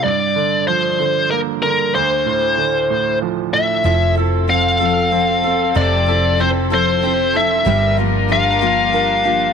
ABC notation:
X:1
M:6/8
L:1/8
Q:3/8=63
K:F
V:1 name="Lead electric guitar"
d2 c2 B B | c4 z e- | e z f4 | d2 c c2 e- |
e z f4 |]
V:2 name="String section"
z6 | z6 | [F,CA]6- | [F,CA]6 |
[G,DFB]6 |]
V:3 name="Steel-string acoustic guitar"
z6 | z6 | [F,CEA] [CEA] [F,CA] [F,CA] [F,CA] [CA] | [F,CEA] [CEA] [F,CEA] [F,CEA] [F,CEA] [CEA] |
[G,,D,F,B,DG] [F,B,DG] [F,B,DG] [G,,D,F,B,DG] [F,B,DG] [F,B,DG] |]
V:4 name="Grand piano"
G,, D, F, D, B, D, | D,, A,, D, A,, F, A,, | F, A C A C A | C, A C A C A |
G, F B F B F |]
V:5 name="Fingered electric bass" clef=bass
z6 | z6 | F,,,6 | F,,,6 |
G,,,6 |]